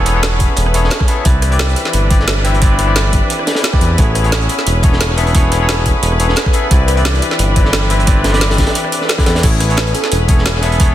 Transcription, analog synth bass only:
0.00 0.48 E1 medium
0.57 0.90 E1 medium
1.26 1.75 C2 loud
1.94 3.21 G1 medium
3.81 3.97 E2 loud
3.98 4.48 A1 loud
4.66 5.93 E1 medium
6.03 6.36 E1 loud
6.71 7.21 C2 loud
7.39 8.66 G1 medium
9.27 9.42 E2 loud
9.44 9.94 A1 loud
10.12 10.95 E1 medium

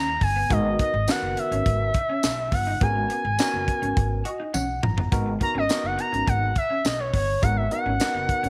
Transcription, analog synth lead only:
0.00 0.24 A#5 loud
0.23 0.53 G#5 loud
0.52 0.80 D#5 loud
0.81 1.12 D#5 medium
1.10 1.40 F#5 loud
1.39 2.55 E5 loud
2.54 2.82 F#5 medium
2.83 4.51 G#5 loud
5.43 5.55 A#5 loud
5.58 5.87 D#5 medium
5.86 5.99 F#5 medium
6.00 6.30 A#5 loud
6.28 6.57 F#5 loud
6.57 6.87 E5 loud
6.86 7.01 D#5 loud
7.00 7.13 C#5 medium
7.14 7.44 C#5 medium
7.42 7.58 F#5 loud
7.57 7.71 E5 medium
7.72 8.49 F#5 loud

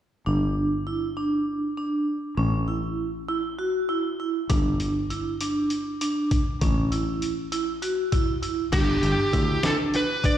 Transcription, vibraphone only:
0.26 0.67 D4 medium
0.87 1.07 E4 soft
1.17 1.57 D4 medium
1.77 2.18 D4 medium
2.37 2.58 C#4 medium
2.68 3.08 E4 soft
3.29 3.49 E4 medium
3.59 3.79 F#4 medium
3.89 4.09 E4 medium
4.20 4.40 E4 medium
4.50 4.90 D4 medium
5.11 5.31 E4 medium
5.41 5.81 D4 medium
6.01 6.41 D4 medium
6.62 6.82 C#4 medium
6.92 7.32 E4 medium
7.52 7.72 E4 medium
7.82 8.02 F#4 medium
8.12 8.32 E4 medium
8.42 8.62 E4 medium
8.72 9.12 D4 medium
9.33 9.53 E4 medium
9.63 10.03 D4 medium
10.24 10.38 D4 medium

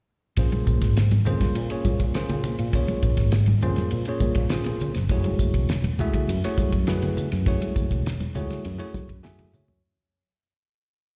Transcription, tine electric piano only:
0.38 0.97 A#3 medium
0.38 0.97 C#4 medium
0.38 0.97 F4 medium
0.38 0.98 G#4 medium
0.38 0.98 C5 medium
1.25 1.56 A#3 medium
1.25 1.56 C#4 medium
1.25 1.56 F4 medium
1.25 1.56 G#4 medium
1.25 1.56 C5 medium
1.70 2.01 A#3 medium
1.70 2.00 C#4 medium
1.70 2.00 F4 medium
1.70 2.01 G#4 medium
1.70 2.01 C#5 medium
2.15 2.55 A#3 medium
2.15 2.55 C#4 medium
2.15 2.55 F4 medium
2.15 2.55 G#4 medium
2.15 2.55 C5 medium
2.74 3.34 A#3 medium
2.74 3.34 C#4 medium
2.74 3.34 F4 medium
2.74 3.34 G#4 medium
2.74 3.34 C#5 medium
3.63 3.93 A#3 medium
3.63 3.92 C#4 medium
3.63 3.92 F4 medium
3.63 3.92 G#4 medium
3.63 3.93 C5 medium
4.08 4.37 A#3 medium
4.08 4.37 C#4 medium
4.08 4.37 F4 medium
4.08 4.38 G#4 medium
4.08 4.38 C#5 medium
4.50 4.91 A#3 medium
4.50 4.91 C#4 medium
4.50 4.91 F4 medium
4.50 4.91 G#4 medium
4.50 4.91 C5 medium
5.10 5.70 A3 medium
5.10 5.70 E4 medium
5.10 5.70 F#4 medium
5.10 5.70 G#4 medium
5.10 5.70 C#5 medium
6.00 6.29 A3 medium
6.00 6.29 E4 medium
6.00 6.29 F#4 medium
6.00 6.30 G#4 medium
6.00 6.30 E5 medium
6.45 6.74 A3 medium
6.45 6.74 E4 medium
6.45 6.74 F#4 medium
6.45 6.74 G#4 medium
6.45 6.74 C#5 medium
6.87 7.27 A3 medium
6.87 7.27 E4 medium
6.87 7.28 F#4 medium
6.87 7.28 G#4 medium
6.87 7.28 B4 medium
7.47 8.06 A3 medium
7.47 8.07 E4 medium
7.47 8.07 F#4 medium
7.47 8.06 G#4 medium
7.47 8.07 C#5 medium
8.35 8.65 A3 medium
8.35 8.65 E4 medium
8.35 8.65 F#4 medium
8.35 8.65 G#4 medium
8.35 8.65 C#5 medium
8.79 9.09 A3 medium
8.79 9.09 E4 medium
8.79 9.09 F#4 medium
8.79 9.09 G#4 medium
8.79 9.09 C#5 medium
9.23 9.63 A3 medium
9.23 9.63 E4 medium
9.23 9.63 F#4 medium
9.23 9.63 G#4 medium
9.23 9.63 E5 medium
9.23 9.51 G#5 medium
9.54 9.81 C#5 medium

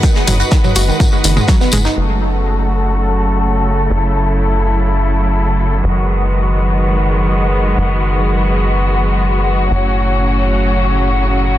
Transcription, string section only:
0.00 1.93 G#3 medium
0.00 1.93 D#4 medium
0.00 1.93 F#4 medium
0.00 1.93 B4 medium
0.00 1.93 F#5 medium
1.97 5.80 C#3 medium
1.97 9.67 F#3 medium
1.97 5.80 A3 medium
1.97 3.88 F#4 medium
1.97 5.80 A4 medium
3.90 5.82 E4 medium
5.84 9.67 D#3 medium
5.84 9.67 G#3 medium
5.84 9.67 B3 medium
5.84 11.58 F#4 medium
9.71 11.58 A2 medium
9.71 11.58 C#3 medium
9.71 11.58 F#3 medium
9.71 11.58 C#4 medium

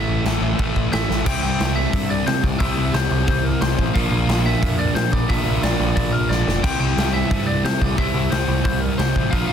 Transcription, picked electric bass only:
0.08 0.19 A1 medium
0.24 0.36 A1 medium
0.41 0.52 A1 medium
0.59 0.70 A1 medium
0.76 0.87 A1 medium
0.93 1.04 A1 medium
1.10 1.21 A1 medium
1.26 1.39 C2 loud
1.43 1.56 C2 medium
1.60 1.85 C2 medium
1.93 2.19 G2 medium
2.27 2.40 C3 medium
2.43 2.56 C2 medium
2.60 2.73 C2 loud
2.78 2.90 C2 medium
2.94 3.07 C2 loud
3.11 3.24 C2 medium
3.28 3.53 C2 loud
3.62 3.74 C2 medium
3.79 3.91 A1 medium
3.95 4.08 A#1 loud
4.11 4.24 A#1 loud
4.28 4.54 A#1 loud
4.63 4.88 F2 medium
4.95 5.08 A#2 medium
5.13 5.25 A#1 medium
5.30 5.42 A#1 loud
5.46 5.59 A#1 medium
5.62 5.75 A#1 loud
5.80 5.92 A#1 medium
5.97 6.22 A#1 medium
6.30 6.43 A#1 medium
6.46 6.59 F1 medium
6.64 6.76 C2 loud
6.79 6.92 C2 medium
6.96 7.22 C2 loud
7.31 7.56 G2 medium
7.64 7.77 C3 loud
7.81 7.94 C2 medium
7.98 8.11 C2 loud
8.14 8.27 C2 loud
8.32 8.44 C2 loud
8.48 8.61 C2 medium
8.65 8.91 C2 loud
8.99 9.12 C2 loud
9.16 9.28 A1 medium
9.32 9.45 A#1 medium
9.49 9.53 A#1 medium

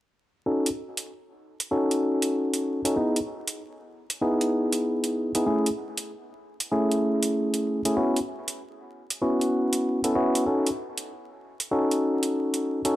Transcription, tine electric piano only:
0.46 0.68 C#4 medium
0.46 0.68 D#4 medium
0.46 0.68 F#4 medium
0.46 0.68 A4 medium
1.71 2.80 C#4 medium
1.71 2.80 D#4 medium
1.71 2.80 F#4 medium
1.71 2.80 A4 medium
2.85 2.95 C#4 medium
2.85 2.95 D#4 medium
2.85 2.95 F#4 medium
2.85 2.95 A4 medium
2.96 3.18 B3 medium
2.96 3.18 D#4 medium
2.96 3.18 E4 medium
2.96 3.18 G#4 medium
4.21 5.30 B3 medium
4.21 5.30 D#4 medium
4.21 5.30 E4 medium
4.21 5.30 G#4 medium
5.35 5.45 B3 medium
5.35 5.45 D#4 medium
5.35 5.45 E4 medium
5.35 5.45 G#4 medium
5.46 5.68 A3 medium
5.46 5.68 C#4 medium
5.46 5.68 E4 medium
5.46 5.68 G#4 medium
6.72 7.80 A3 medium
6.72 7.80 C#4 medium
6.72 7.80 E4 medium
6.72 7.80 G#4 medium
7.85 7.95 A3 medium
7.85 7.95 C#4 medium
7.85 7.95 E4 medium
7.85 7.95 G#4 medium
7.96 8.18 B3 medium
7.96 8.18 C#4 medium
7.96 8.18 E4 medium
7.96 8.18 F#4 medium
9.22 10.00 B3 medium
9.22 10.00 C#4 medium
9.22 10.00 E4 medium
9.22 10.00 F#4 medium
10.04 10.14 B3 medium
10.04 10.14 C#4 medium
10.04 10.14 E4 medium
10.04 10.14 A4 medium
10.15 10.44 B3 medium
10.15 10.44 C#4 medium
10.15 10.44 E4 medium
10.15 10.44 F#4 medium
10.46 10.68 C#4 medium
10.46 10.68 D#4 medium
10.46 10.68 F#4 medium
10.46 10.68 A4 medium
11.71 12.80 C#4 medium
11.71 12.80 D#4 medium
11.71 12.80 F#4 medium
11.71 12.80 A4 medium
12.85 12.95 C#4 medium
12.85 12.95 D#4 medium
12.85 12.95 F#4 medium
12.85 12.95 A4 medium

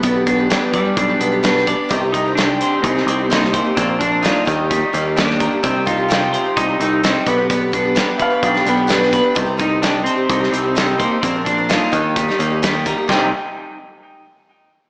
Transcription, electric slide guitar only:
0.03 0.47 B3 medium
0.72 1.62 G3 loud
2.12 2.35 D#4 loud
2.35 2.82 D4 medium
2.82 3.32 C4 medium
3.32 3.49 A#3 medium
3.52 3.77 A#3 medium
3.75 4.00 C4 medium
3.99 4.21 D4 medium
4.22 4.89 D#4 medium
5.17 5.63 D4 medium
5.63 5.85 C4 medium
5.87 6.53 F4 loud
6.56 6.79 D#4 medium
6.80 7.04 D#4 medium
7.04 7.27 C4 medium
7.27 7.49 B3 medium
7.50 8.39 B3 medium
9.59 9.83 D#4 medium
9.82 10.04 D4 loud
10.04 10.94 C4 loud
10.98 11.20 A#3 medium
11.22 11.46 C4 medium
11.45 11.69 D4 medium
11.69 12.35 D#4 medium
13.10 13.31 D#4 medium

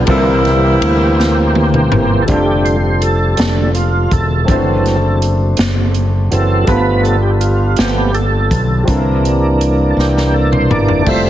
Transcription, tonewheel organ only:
0.07 2.24 E3 medium
0.07 2.24 A#3 medium
0.07 2.24 C4 medium
0.07 2.24 G4 medium
2.22 2.29 A4 medium
2.28 2.77 D3 soft
2.28 2.77 G3 soft
2.28 2.78 A3 medium
2.28 2.67 G4 medium
2.65 3.03 C5 medium
3.02 3.77 A4 medium
3.36 3.70 D3 soft
3.36 3.70 G3 soft
3.36 3.71 A3 soft
3.75 4.13 F4 medium
4.13 5.18 A4 medium
4.47 4.96 E3 medium
4.47 4.96 F#3 soft
4.47 4.97 C4 medium
6.31 6.65 E3 soft
6.31 6.64 F#3 soft
6.31 6.65 C4 soft
6.31 6.70 A4 medium
6.67 7.16 F3 medium
6.67 7.17 A3 soft
6.67 7.17 B3 medium
6.67 7.06 B4 loud
7.03 7.21 A4 medium
7.22 7.31 G4 medium
7.40 7.79 F4 medium
7.79 8.12 F3 soft
7.79 8.12 A3 soft
7.79 8.12 B3 medium
7.79 8.16 G4 medium
8.14 8.84 A4 medium
8.88 11.03 E3 soft
8.88 11.03 A#3 soft
8.88 11.04 D4 medium
9.91 9.98 A4 medium
9.99 10.36 G4 medium
10.34 10.53 A4 medium
10.52 10.71 C5 medium
10.72 11.09 D5 medium
11.07 11.30 G3 medium
11.07 11.30 A3 soft
11.07 11.30 C5 loud
11.07 11.30 E5 medium

